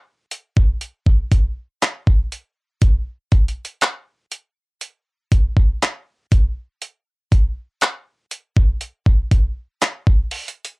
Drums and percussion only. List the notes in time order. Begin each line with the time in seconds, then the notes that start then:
0.31 closed hi-hat
0.57 kick
0.81 closed hi-hat
1.06 kick
1.32 kick, closed hi-hat
1.82 clap, closed hi-hat
2.07 kick
2.32 closed hi-hat
2.82 kick, closed hi-hat
3.32 kick, closed hi-hat
3.48 closed hi-hat
3.65 closed hi-hat
3.81 clap, closed hi-hat
4.32 closed hi-hat
4.81 closed hi-hat
5.32 kick, closed hi-hat
5.57 kick
5.82 clap, closed hi-hat
6.32 kick, closed hi-hat
6.82 closed hi-hat
7.32 kick, closed hi-hat
7.81 clap, closed hi-hat
8.31 closed hi-hat
8.57 kick
8.81 closed hi-hat
9.06 kick
9.31 kick, closed hi-hat
9.82 clap, closed hi-hat
10.07 kick
10.31 closed hi-hat, open hi-hat
10.48 closed hi-hat
10.65 closed hi-hat